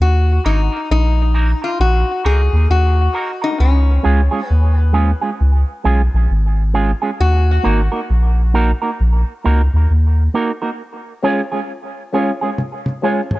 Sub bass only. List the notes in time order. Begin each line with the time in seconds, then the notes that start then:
0.00 D#2
0.45 G#1
0.91 A#1
1.80 A#1
2.25 C#2
2.53 D#2
2.69 D#2
3.60 C#2
4.05 C#2
4.50 D#2
5.40 C#2
5.85 B1
6.14 A#1
6.30 G#1
7.20 D#2
7.65 G#1
8.10 A#1
9.00 A#1
9.46 C#2
9.73 D#2
9.90 D#2